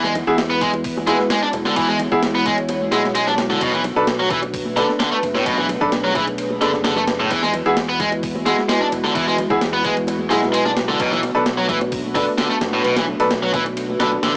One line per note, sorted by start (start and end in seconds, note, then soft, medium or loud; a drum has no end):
0.00 0.22 E2 loud
0.00 3.58 G#3 medium
0.00 0.12 G#3 loud
0.00 3.57 B3 medium
0.00 3.58 E4 medium
0.00 5.42 F#4 medium
0.00 1.75 B4 medium
0.04 snare soft
0.15 ride medium
0.15 high bongo medium
0.15 low conga medium
0.27 1.15 E2 medium
0.27 0.34 E4 loud
0.27 0.34 F#4 medium
0.27 0.34 G#4 loud
0.38 snare loud
0.38 ride medium
0.38 high bongo loud
0.50 0.60 B3 medium
0.61 0.70 G#3 medium
0.61 kick loud
0.61 ride medium
0.61 high conga medium
0.61 low conga medium
0.73 ride soft
0.73 high bongo medium
0.84 kick loud
0.84 open hi-hat medium
0.97 high bongo medium
0.97 high conga medium
1.07 1.16 G#3 medium
1.07 1.20 E4 medium
1.07 1.20 F#4 medium
1.07 1.20 G#4 medium
1.07 snare soft
1.07 ride medium
1.19 snare soft
1.30 1.40 G#3 medium
1.30 snare loud
1.30 ride medium
1.30 high bongo medium
1.43 1.48 D4 loud
1.53 1.63 E1 medium
1.53 ride medium
1.53 high bongo medium
1.53 low conga medium
1.65 1.76 D3 loud
1.65 snare soft
1.76 2.07 E2 loud
1.76 1.88 E3 loud
1.76 3.59 C#5 medium
1.76 kick loud
1.76 ride medium
1.88 1.97 G#3 loud
1.88 high bongo medium
1.99 ride medium
1.99 low conga medium
2.11 2.88 E2 medium
2.11 2.19 E4 loud
2.11 2.19 F#4 medium
2.11 2.19 G#4 loud
2.11 kick loud
2.11 high bongo medium
2.23 snare loud
2.23 ride medium
2.35 2.45 B3 medium
2.45 2.55 G#3 medium
2.45 kick medium
2.45 ride medium
2.45 high bongo medium
2.45 high conga medium
2.58 ride soft
2.69 ride medium
2.69 high bongo medium
2.81 high conga medium
2.92 3.57 B1 loud
2.92 3.01 G#3 medium
2.92 3.05 E4 medium
2.92 3.05 F#4 medium
2.92 3.05 G#4 medium
2.92 snare medium
2.92 ride medium
3.04 snare soft
3.04 high bongo medium
3.15 3.24 G#3 medium
3.15 ride medium
3.27 3.32 D4 loud
3.27 snare soft
3.27 high bongo medium
3.38 snare loud
3.38 ride medium
3.50 3.61 D3 loud
3.50 snare soft
3.61 3.91 B1 loud
3.61 3.72 B2 loud
3.61 7.27 A3 medium
3.61 7.27 B3 medium
3.61 7.27 D4 medium
3.61 7.27 B4 medium
3.61 kick loud
3.61 ride medium
3.61 high bongo medium
3.73 3.82 E3 loud
3.73 snare soft
3.84 ride medium
3.84 high bongo medium
3.84 low conga medium
3.96 4.84 B1 medium
3.96 4.04 D4 loud
3.96 4.04 A4 medium
3.96 4.04 B4 loud
4.07 snare loud
4.07 ride medium
4.19 4.29 F#3 medium
4.19 high bongo soft
4.30 4.39 E3 medium
4.30 kick loud
4.30 ride medium
4.30 high conga medium
4.30 low conga medium
4.42 ride soft
4.42 high bongo medium
4.54 kick loud
4.54 open hi-hat medium
4.65 high conga loud
4.76 4.86 D3 medium
4.76 4.89 D4 medium
4.76 4.89 A4 medium
4.76 4.89 B4 medium
4.76 snare soft
4.76 ride medium
4.76 high bongo medium
4.89 snare soft
5.00 5.09 D3 medium
5.00 snare loud
5.00 ride medium
5.00 high bongo medium
5.12 5.17 A3 loud
5.23 5.32 F#1 loud
5.23 ride medium
5.23 low conga medium
5.35 5.45 A2 loud
5.35 snare soft
5.35 high bongo medium
5.46 5.76 B1 loud
5.46 5.57 B2 loud
5.46 7.29 G#4 medium
5.46 kick loud
5.46 ride medium
5.58 5.66 E3 loud
5.58 high bongo medium
5.69 ride medium
5.69 low conga medium
5.81 6.57 B1 medium
5.81 5.88 D4 loud
5.81 5.88 A4 medium
5.81 5.88 B4 loud
5.81 kick medium
5.92 snare loud
5.92 ride medium
5.92 high bongo medium
6.04 6.14 F#3 medium
6.14 6.24 E3 medium
6.14 kick loud
6.14 ride medium
6.14 high bongo medium
6.14 high conga medium
6.27 ride soft
6.38 ride medium
6.50 high bongo medium
6.50 high conga medium
6.61 7.26 F#1 loud
6.61 6.70 D3 medium
6.61 6.74 D4 medium
6.61 6.74 A4 medium
6.61 6.74 B4 medium
6.61 snare medium
6.61 ride medium
6.73 snare soft
6.73 high bongo medium
6.84 6.93 D3 medium
6.84 snare loud
6.84 ride medium
6.96 7.01 A3 loud
6.96 snare soft
6.96 low conga medium
7.07 snare loud
7.07 ride medium
7.07 high bongo soft
7.20 7.30 A2 loud
7.31 7.61 E2 loud
7.31 7.42 E3 loud
7.31 10.96 G#3 medium
7.31 14.37 B3 medium
7.31 10.96 E4 medium
7.31 14.37 F#4 medium
7.31 10.96 B4 medium
7.31 kick loud
7.31 ride medium
7.43 7.51 G#3 loud
7.43 snare soft
7.53 ride medium
7.53 high bongo medium
7.53 low conga medium
7.66 8.53 E2 medium
7.66 7.73 E4 loud
7.66 7.73 F#4 loud
7.66 7.73 G#4 loud
7.77 snare loud
7.77 ride medium
7.77 high bongo medium
7.89 7.99 B3 medium
8.00 8.09 G#3 medium
8.00 kick loud
8.00 ride medium
8.00 high conga medium
8.00 low conga medium
8.12 ride soft
8.12 high bongo medium
8.23 kick loud
8.23 open hi-hat medium
8.35 high bongo medium
8.35 high conga medium
8.46 8.55 G#3 medium
8.46 8.58 E4 medium
8.46 8.58 F#4 medium
8.46 8.58 G#4 medium
8.46 snare soft
8.46 ride medium
8.58 snare soft
8.69 8.78 G#3 medium
8.69 snare loud
8.69 ride medium
8.69 high bongo medium
8.81 8.86 D4 loud
8.92 9.01 E1 medium
8.92 ride medium
8.92 high bongo medium
8.92 low conga medium
9.04 9.14 D3 loud
9.04 snare soft
9.15 9.45 E2 loud
9.15 9.26 E3 loud
9.15 kick loud
9.15 ride medium
9.27 9.35 G#3 loud
9.27 high bongo medium
9.38 ride medium
9.38 low conga medium
9.50 10.26 E2 medium
9.50 9.57 E4 loud
9.50 9.57 F#4 medium
9.50 9.57 G#4 loud
9.50 kick loud
9.50 high bongo medium
9.61 snare loud
9.61 ride medium
9.73 9.83 B3 medium
9.84 9.93 G#3 medium
9.84 kick loud
9.84 ride medium
9.84 high bongo medium
9.84 high conga medium
9.97 ride soft
10.07 ride medium
10.07 high bongo medium
10.19 high conga medium
10.30 10.95 B1 medium
10.30 10.39 G#3 medium
10.30 10.43 E4 medium
10.30 10.43 F#4 medium
10.30 10.43 G#4 medium
10.30 snare medium
10.30 ride medium
10.43 snare soft
10.43 high bongo medium
10.53 10.62 G#3 medium
10.53 ride medium
10.65 10.70 D4 loud
10.65 snare soft
10.65 high bongo medium
10.77 snare loud
10.77 ride medium
10.89 10.99 D3 loud
10.89 snare soft
11.00 11.30 B1 loud
11.00 11.11 B2 loud
11.00 14.37 A3 medium
11.00 14.37 D4 medium
11.00 14.37 B4 medium
11.00 kick loud
11.00 ride medium
11.00 high bongo medium
11.12 11.20 E3 loud
11.12 snare soft
11.23 ride medium
11.23 high bongo medium
11.23 low conga medium
11.35 12.22 B1 medium
11.35 11.42 D4 loud
11.35 11.42 A4 medium
11.35 11.42 B4 loud
11.46 snare loud
11.46 ride medium
11.58 11.68 F#3 medium
11.58 high bongo medium
11.69 11.78 E3 medium
11.69 kick medium
11.69 ride medium
11.69 high conga medium
11.69 low conga medium
11.81 ride soft
11.81 high bongo medium
11.92 kick loud
11.92 open hi-hat medium
12.04 high conga medium
12.15 12.24 D3 medium
12.15 12.28 D4 medium
12.15 12.28 A4 medium
12.15 12.28 B4 medium
12.15 kick loud
12.15 open hi-hat medium
12.15 high bongo medium
12.38 12.47 D3 medium
12.38 snare loud
12.38 ride medium
12.38 high bongo medium
12.50 12.55 A3 loud
12.61 12.70 F#1 medium
12.61 snare loud
12.61 ride medium
12.61 low conga medium
12.73 12.83 A2 loud
12.73 high bongo medium
12.84 13.15 B1 loud
12.84 12.95 B2 loud
12.84 ride medium
12.96 13.05 E3 loud
12.96 snare loud
12.96 ride medium
12.96 high bongo medium
13.08 low conga medium
13.20 13.95 B1 medium
13.20 13.27 D4 loud
13.20 13.27 A4 medium
13.20 13.27 B4 loud
13.20 ride medium
13.31 snare loud
13.31 ride medium
13.31 high bongo medium
13.43 13.52 F#3 medium
13.54 13.63 E3 medium
13.54 kick loud
13.54 ride medium
13.54 high bongo medium
13.54 high conga medium
13.54 low conga medium
13.66 ride soft
13.77 ride medium
13.89 high bongo medium
13.89 high conga medium
14.00 14.17 B1 medium
14.00 14.09 D3 medium
14.00 14.13 D4 medium
14.00 14.13 A4 medium
14.00 14.13 B4 medium
14.00 snare loud
14.00 ride medium
14.12 high bongo medium
14.23 14.32 A1 loud
14.23 14.32 D3 medium
14.23 snare loud
14.23 ride medium